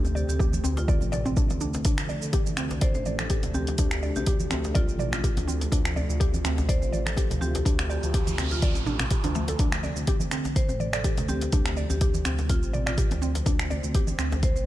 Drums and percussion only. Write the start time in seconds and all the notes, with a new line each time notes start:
0.05 djembe tone, shaker
0.16 shaker
0.29 muted conga, shaker
0.40 kick, djembe tone, shaker
0.53 high conga, shaker
0.64 muted conga, djembe tone, shaker
0.77 djembe slap, shaker
0.88 kick, high conga, shaker
1.01 djembe tone, shaker
1.13 djembe slap, muted conga, high conga, low conga, shaker
1.26 djembe tone, low conga, shaker
1.37 kick, low conga, shaker
1.50 muted conga, djembe slap, high conga, shaker
1.61 high conga, djembe tone, shaker
1.74 djembe slap, shaker
1.85 kick, closed hi-hat, muted conga, shaker
1.98 finger snap, shaker
2.09 djembe tone, shaker
2.22 muted conga, shaker
2.33 kick, closed hi-hat, djembe tone, shaker
2.46 high conga, shaker
2.57 finger snap, muted conga, shaker
2.70 djembe slap, djembe tone, shaker
2.81 kick, closed hi-hat, shaker
2.95 djembe tone, shaker
3.06 muted conga, high conga, shaker
3.19 finger snap, high conga, shaker
3.30 kick, closed hi-hat, djembe tone, shaker
3.43 closed hi-hat, djembe slap, muted conga, low conga, shaker
3.53 high conga, djembe tone, shaker
3.67 closed hi-hat, djembe slap, shaker
3.78 kick, closed hi-hat, muted conga, shaker
3.91 finger snap, djembe tone, shaker
4.03 shaker
4.15 muted conga, djembe tone, shaker
4.26 kick, closed hi-hat, shaker
4.40 high conga, shaker
4.50 finger snap, muted conga, djembe tone, shaker
4.64 djembe slap, shaker
4.75 kick, closed hi-hat, high conga, djembe tone, shaker
4.89 shaker
4.99 muted conga, high conga, low conga, shaker
5.12 finger snap, djembe tone, low conga, shaker
5.24 kick, closed hi-hat, low conga, shaker
5.37 closed hi-hat, muted conga, djembe slap, high conga, djembe tone, shaker
5.48 high conga, shaker
5.61 closed hi-hat, djembe slap, shaker
5.72 kick, closed hi-hat, muted conga, djembe tone, shaker
5.85 finger snap, shaker
5.97 djembe tone, shaker
6.10 muted conga, shaker
6.21 kick, closed hi-hat, shaker
6.34 djembe tone, high conga, shaker
6.45 finger snap, muted conga, shaker
6.58 djembe slap, djembe tone, shaker
6.69 kick, closed hi-hat, shaker
6.82 shaker
6.93 muted conga, high conga, djembe tone, shaker
7.06 finger snap, high conga, shaker
7.17 kick, closed hi-hat, djembe tone, shaker
7.30 closed hi-hat, muted conga, djembe slap, low conga, shaker
7.41 high conga, shaker
7.55 closed hi-hat, djembe slap, djembe tone, shaker
7.66 kick, closed hi-hat, muted conga, shaker
7.79 finger snap, closed hi-hat, djembe tone, shaker
7.90 shaker
8.03 closed hi-hat, muted conga, shaker
8.14 kick, closed hi-hat, djembe tone, shaker
8.27 closed hi-hat, high conga, shaker
8.38 finger snap, djembe tone, shaker
8.51 closed hi-hat, djembe slap, shaker
8.62 kick, closed hi-hat, high conga, shaker
8.75 closed hi-hat, djembe tone, shaker
8.86 muted conga, high conga, low conga, shaker
8.99 finger snap, djembe tone, low conga, shaker
9.11 kick, closed hi-hat, low conga, shaker
9.24 closed hi-hat, muted conga, djembe slap, high conga, shaker
9.34 high conga, djembe tone, shaker
9.48 closed hi-hat, djembe slap, shaker
9.59 kick, closed hi-hat, muted conga, shaker
9.72 finger snap, shaker
9.83 djembe tone, shaker
9.96 muted conga, shaker
10.07 kick, closed hi-hat, djembe tone, shaker
10.20 high conga, shaker
10.31 finger snap, muted conga, shaker
10.45 djembe slap, djembe tone, shaker
10.56 kick, closed hi-hat, shaker
10.69 djembe tone, shaker
10.80 muted conga, high conga, shaker
10.93 finger snap, high conga, shaker
11.04 kick, closed hi-hat, djembe tone, shaker
11.17 closed hi-hat, muted conga, djembe slap, low conga, shaker
11.29 djembe tone, high conga, shaker
11.41 closed hi-hat, djembe slap, shaker
11.52 kick, closed hi-hat, muted conga, shaker
11.66 finger snap, djembe tone, shaker
11.77 shaker
11.90 muted conga, djembe tone, shaker
12.01 kick, closed hi-hat, shaker
12.14 high conga, shaker
12.25 finger snap, muted conga, djembe tone, shaker
12.39 djembe slap, shaker
12.49 kick, closed hi-hat, high conga, djembe tone, shaker
12.63 shaker
12.74 muted conga, high conga, low conga, shaker
12.87 finger snap, djembe tone, low conga, shaker
12.98 kick, closed hi-hat, low conga, shaker
13.11 closed hi-hat, muted conga, djembe slap, high conga, djembe tone, shaker
13.21 high conga, shaker
13.35 closed hi-hat, djembe slap, shaker
13.46 kick, closed hi-hat, muted conga, djembe tone, shaker
13.59 finger snap, shaker
13.71 djembe tone, shaker
13.83 muted conga, shaker
13.95 kick, closed hi-hat, shaker
14.07 djembe tone, high conga, shaker
14.18 finger snap, muted conga, shaker
14.32 djembe slap, djembe tone, shaker
14.43 kick, closed hi-hat, shaker
14.56 shaker